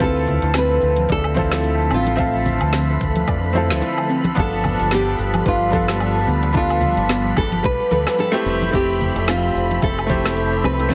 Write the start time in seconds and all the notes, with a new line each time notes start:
Already playing: C4
0.00 D2 D3 F3 A3 C4 E4 F4 A4 B5 B6, kick, closed hi-hat, cabasa
0.15 cabasa
0.27 low conga, cabasa
0.42 D2, closed hi-hat, cabasa
0.54 C4, snare, closed hi-hat, cabasa, low woodblock
0.58 B4
0.69 cabasa
0.81 D2, cabasa
0.97 closed hi-hat, high conga, cabasa
1.09 D2 A4 D5, kick, closed hi-hat, cabasa
1.24 cabasa, low woodblock
1.34 C4 E4 F4 C5, kick, high conga, cabasa
1.39 A4
1.51 snare, closed hi-hat, high bongo, cabasa
1.64 closed hi-hat, cabasa
1.79 cabasa
1.91 A1 C4 F4, cabasa, low woodblock
2.07 closed hi-hat, high bongo, cabasa
2.16 C4 F4 B4 E5, kick, closed hi-hat, cabasa
2.20 A4
2.34 cabasa
2.46 low conga, cabasa
2.61 D2, closed hi-hat, cabasa, low woodblock
2.73 C4, snare, closed hi-hat, cabasa
2.89 cabasa
3.00 D2, kick, cabasa
3.16 closed hi-hat, high conga, cabasa
3.28 F2 D5, kick, closed hi-hat, high bongo, cabasa, low woodblock
3.43 cabasa
3.53 C4 E4 F4 C5, high bongo, high conga, cabasa
3.57 A4
3.70 D2, snare, closed hi-hat, cabasa
3.82 closed hi-hat, high bongo, cabasa
3.98 cabasa, low woodblock
4.09 C4, cabasa
4.24 closed hi-hat, high conga, cabasa
4.35 G1 G3 B3 D4 F4 A4 B4, kick, closed hi-hat, cabasa
4.39 A4
4.52 cabasa
4.64 low conga, cabasa, low woodblock
4.79 G1, closed hi-hat, cabasa
4.91 B3 G4, snare, closed hi-hat, cabasa
5.07 cabasa
5.18 G1, cabasa
5.34 closed hi-hat, high conga, cabasa, low woodblock
5.46 G1 F4 B4, kick, closed hi-hat, cabasa
5.61 cabasa
5.70 B3 D4 F4 A4, kick, high conga, cabasa
5.75 A4
5.88 snare, closed hi-hat, high bongo, cabasa
6.00 closed hi-hat, cabasa, low woodblock
6.16 cabasa
6.27 D2 B3, cabasa
6.43 closed hi-hat, high bongo, cabasa
6.52 B3 D4 F4 G4, kick, closed hi-hat, cabasa
6.57 F4 A4
6.70 cabasa, low woodblock
6.81 low conga, cabasa
6.97 G1, closed hi-hat, cabasa
7.09 B3, snare, closed hi-hat, cabasa
7.25 cabasa
7.37 G1 A4, kick, cabasa, low woodblock
7.52 closed hi-hat, high conga, cabasa
7.63 B1 B4, kick, closed hi-hat, high bongo, cabasa
7.80 cabasa
7.91 D2 A4 B4, high bongo, high conga, cabasa
8.07 snare, closed hi-hat, cabasa, low woodblock
8.19 A4, closed hi-hat, high bongo, cabasa
8.32 A3 C4 E4 G4, cabasa
8.45 F1 F3 C4 A4 E5, cabasa
8.62 closed hi-hat, high conga, cabasa
8.71 F1 A3 C4 G4 E5, kick, closed hi-hat, cabasa
8.75 G4
8.89 cabasa
9.01 low conga, cabasa
9.15 F1, closed hi-hat, cabasa
9.28 C4 F4, snare, closed hi-hat, cabasa, low woodblock
9.43 cabasa
9.55 F1, cabasa
9.71 closed hi-hat, high conga, cabasa
9.82 F1 A4 E5, kick, closed hi-hat, cabasa
9.99 cabasa, low woodblock
10.07 A3 C4 E4 C5, kick, high conga, cabasa
10.11 G4
10.25 snare, closed hi-hat, high bongo, cabasa
10.37 closed hi-hat, cabasa
10.53 cabasa
10.64 C2 C4 B4, cabasa, low woodblock
10.80 closed hi-hat, high bongo, cabasa
10.89 A3 C4